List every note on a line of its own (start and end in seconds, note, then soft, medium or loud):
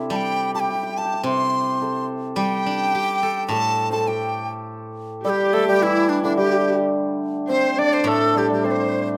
0.00 0.68 C3 medium
0.00 1.02 D4 medium
0.00 3.01 E4 medium
0.00 0.11 G4 medium
0.00 1.81 A4 medium
0.00 1.24 C5 medium
0.10 1.82 G3 medium
0.10 0.54 G4 medium
0.10 0.17 A5 medium
0.16 0.51 G5 medium
0.54 0.60 G4 medium
0.54 0.61 A5 medium
0.60 0.69 G4 soft
0.60 0.99 G5 medium
0.69 0.75 G4 soft
0.75 0.83 G4 soft
0.83 0.89 G4 soft
0.89 0.98 G4 soft
0.98 1.05 G4 medium
0.98 1.25 A5 medium
1.05 1.13 G4 soft
1.14 2.37 G4 medium
1.23 2.93 C3 medium
1.23 3.88 C5 medium
1.23 2.06 C6 medium
1.82 3.50 A4 medium
2.36 4.08 G3 medium
2.36 4.08 G4 medium
2.36 3.46 G5 medium
2.66 3.80 D4 soft
2.95 4.09 G4 soft
3.23 4.38 A4 soft
3.48 5.23 A2 medium
3.48 3.92 A4 medium
3.48 3.90 A5 loud
3.90 6.85 A4 medium
3.90 6.54 C5 medium
3.90 4.09 A5 medium
4.08 7.22 G4 medium
4.08 4.52 G5 medium
5.25 5.59 G3 medium
5.25 5.82 G4 medium
5.25 5.30 A4 medium
5.29 5.55 G4 medium
5.53 8.07 A3 medium
5.53 5.67 A4 medium
5.68 6.37 G3 medium
5.68 5.84 G4 medium
5.81 6.30 E3 medium
5.81 6.39 E4 medium
5.81 6.11 E4 medium
6.09 6.23 D4 medium
6.23 7.55 D3 medium
6.23 6.36 D4 medium
6.37 8.13 G3 medium
6.37 6.76 G4 medium
6.37 6.79 G4 medium
7.49 8.64 C4 medium
7.49 7.80 C5 medium
7.78 9.17 D4 medium
7.78 8.09 D5 medium
7.78 7.95 D5 medium
7.93 8.09 C5 medium
8.04 9.17 A2 medium
8.04 9.17 A3 medium
8.04 8.39 A4 medium
8.04 8.66 A4 medium
8.35 8.49 G3 medium
8.35 8.51 G4 medium
8.50 9.17 G3 medium
8.50 8.67 G4 medium
8.64 9.17 C4 medium
8.64 9.08 C5 medium
8.64 8.72 D5 medium
8.71 9.09 C5 medium